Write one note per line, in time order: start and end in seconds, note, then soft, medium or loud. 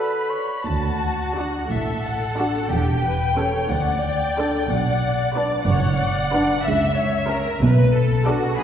0.00 0.31 D3 soft
0.00 0.35 F#4 soft
0.00 0.31 B4 soft
0.00 0.67 B5 soft
0.30 0.67 C#5 soft
0.66 1.51 D2 soft
0.66 1.52 D2 soft
0.66 1.66 F#4 soft
0.66 1.36 A5 medium
1.35 1.62 D4 soft
1.35 1.62 F#4 soft
1.35 1.69 F#5 soft
1.71 2.52 A1 medium
1.71 2.52 A2 soft
1.71 2.70 A4 soft
1.71 2.05 E5 medium
2.05 2.71 F#5 medium
2.38 2.62 D4 soft
2.38 2.63 F#4 soft
2.69 3.51 E1 soft
2.69 3.52 E2 medium
2.69 3.04 G4 soft
2.69 3.69 G5 medium
3.03 3.37 B4 soft
3.38 3.63 C#4 soft
3.38 3.62 A4 soft
3.38 3.71 C#5 soft
3.70 4.50 D2 medium
3.70 4.67 D5 medium
3.70 4.04 F#5 medium
4.03 4.68 G5 medium
4.37 4.61 D4 soft
4.37 4.61 A4 soft
4.68 5.48 B1 medium
4.68 5.48 B2 medium
4.68 5.65 D5 soft
4.68 5.35 F#5 medium
5.35 5.59 D4 soft
5.35 5.59 B4 soft
5.35 5.67 D5 medium
5.67 6.46 F#1 medium
5.67 6.46 F#2 medium
5.67 6.00 C#5 medium
5.67 6.63 F#5 medium
5.99 6.64 D5 medium
6.32 6.56 D4 medium
6.32 6.57 B4 medium
6.65 7.42 C#2 medium
6.65 7.43 C#3 medium
6.65 7.59 E5 medium
6.65 6.97 E5 medium
6.96 7.28 C#5 medium
7.27 7.52 C#4 soft
7.27 7.52 A#4 soft
7.27 7.61 A#4 soft
7.61 8.39 B1 medium
7.61 8.39 B2 medium
7.61 7.94 B4 medium
7.95 8.26 A4 medium
8.25 8.49 D4 medium
8.25 8.58 F#4 medium
8.25 8.49 A4 medium
8.57 8.63 B1 medium
8.57 8.63 B2 medium
8.57 8.63 D#4 medium
8.57 8.63 G#4 medium
8.57 8.63 G#4 soft
8.57 8.63 B5 medium